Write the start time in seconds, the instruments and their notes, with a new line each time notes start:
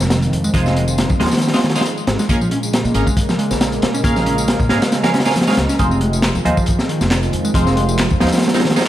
Already playing: analog synth pad D#3 F3 G#3
0.00 upright bass F1, snare, tambourine
0.10 snare, closed hi-hat, tambourine
0.22 closed hi-hat, tambourine
0.32 upright bass F2, closed hi-hat
0.44 picked electric bass G#3, tambourine
0.54 upright bass F1, picked electric bass F3, synth stab G#3 D#4 F4 C5, kick, closed hi-hat, tambourine
0.66 picked electric bass C4, snare, tambourine
0.76 picked electric bass G#3, closed hi-hat
0.88 tambourine
0.98 snare, closed hi-hat, tambourine
1.10 upright bass F2, kick, tambourine
1.20 upright bass D#2, picked electric bass F3, synth stab G#3 D#4 F4 C5, snare, closed hi-hat
1.26 snare, closed hi-hat
1.31 picked electric bass D#3, snare, closed hi-hat, tambourine
1.37 snare, closed hi-hat
1.41 snare, closed hi-hat, tambourine
1.47 snare, closed hi-hat
1.53 synth stab G#3 D#4 F4 C5, picked electric bass C4, snare, closed hi-hat, tambourine
1.59 snare, closed hi-hat
1.63 picked electric bass D#3, snare, closed hi-hat
1.69 snare, closed hi-hat
1.75 synth stab G#3 D#4 F4 C5, snare, closed hi-hat, tambourine
1.81 snare, closed hi-hat
1.85 closed hi-hat, tambourine
1.97 tambourine
2.07 upright bass G#1, snare, closed hi-hat
2.19 picked electric bass G#3, snare, tambourine
2.29 upright bass A#1, analog synth pad C#3 A#3, picked electric bass A#3, synth stab C#4 G#4 A#4 F5, kick, closed hi-hat, tambourine
2.41 picked electric bass F3, tambourine
2.51 picked electric bass C#4, closed hi-hat
2.63 tambourine
2.73 snare, closed hi-hat, tambourine
2.84 upright bass A#2, tambourine
2.94 upright bass G#1, picked electric bass A#3, synth stab C#4 G#4 A#4 F5, closed hi-hat
3.06 picked electric bass G#3, kick, tambourine
3.17 kick, closed hi-hat, tambourine
3.29 picked electric bass F3, snare, tambourine
3.38 picked electric bass G#3, closed hi-hat
3.50 upright bass A#1, snare, tambourine
3.61 snare, closed hi-hat, tambourine
3.72 closed hi-hat, tambourine
3.82 upright bass A#2, snare, closed hi-hat
3.94 picked electric bass C#4, tambourine
4.04 upright bass A#1, picked electric bass A#3, synth stab C#4 G#4 A#4 F5, kick, closed hi-hat, tambourine
4.16 picked electric bass F3, snare, tambourine
4.26 picked electric bass C#4, closed hi-hat
4.38 tambourine
4.48 snare, closed hi-hat, tambourine
4.60 upright bass A#2, kick, tambourine
4.69 upright bass G#1, picked electric bass A#3, synth stab C#4 G#4 A#4 F5, snare, closed hi-hat
4.82 picked electric bass G#3, snare, closed hi-hat, tambourine
4.92 snare, closed hi-hat, tambourine
5.03 picked electric bass F3, synth stab C#4 G#4 A#4 F5, snare, closed hi-hat, tambourine
5.13 picked electric bass C#4, snare, closed hi-hat
5.20 snare, closed hi-hat
5.25 synth stab C#4 G#4 A#4 F5, snare, closed hi-hat, tambourine
5.31 snare, closed hi-hat
5.36 picked electric bass F3, snare, closed hi-hat, tambourine
5.41 snare, closed hi-hat
5.47 picked electric bass G#3, synth stab C#4 G#4 A#4 F5, snare, closed hi-hat, tambourine
5.53 snare, closed hi-hat
5.57 upright bass C#2, snare, closed hi-hat
5.69 picked electric bass C#4, snare, tambourine
5.79 upright bass F1, analog synth pad D#3 F3, picked electric bass F3, synth stab G#3 D#4 F4 C5, kick, closed hi-hat, tambourine
5.91 picked electric bass C4, tambourine
6.01 picked electric bass G#3, closed hi-hat
6.13 tambourine
6.22 snare, clap, closed hi-hat, tambourine
6.35 upright bass F2, tambourine
6.45 upright bass D#2, picked electric bass F3, synth stab G#3 D#4 F4 C5, closed hi-hat
6.57 picked electric bass F3, kick, tambourine
6.66 kick, closed hi-hat, tambourine
6.79 picked electric bass C4, snare, tambourine
6.89 picked electric bass D#3, closed hi-hat
7.01 upright bass F1, snare, tambourine
7.11 snare, clap, closed hi-hat, tambourine
7.23 closed hi-hat, tambourine
7.33 upright bass F2, closed hi-hat
7.45 picked electric bass G#3, tambourine
7.54 upright bass F1, picked electric bass F3, synth stab G#3 D#4 F4 C5, kick, closed hi-hat, tambourine
7.67 picked electric bass C4, snare, tambourine
7.77 picked electric bass G#3, closed hi-hat
7.89 tambourine
7.99 snare, clap, closed hi-hat, tambourine
8.10 upright bass F2, kick, tambourine
8.20 upright bass D#2, picked electric bass F3, synth stab G#3 D#4 F4 C5, snare, closed hi-hat
8.27 snare, closed hi-hat
8.32 picked electric bass F3, snare, closed hi-hat, tambourine
8.37 snare, closed hi-hat
8.42 snare, closed hi-hat, tambourine
8.48 snare, closed hi-hat
8.54 synth stab G#3 D#4 F4 C5, picked electric bass C4, snare, closed hi-hat, tambourine
8.60 snare, closed hi-hat
8.64 picked electric bass D#3, snare, closed hi-hat
8.70 snare, closed hi-hat
8.76 synth stab G#3 D#4 F4 C5, snare, closed hi-hat, tambourine
8.81 snare, closed hi-hat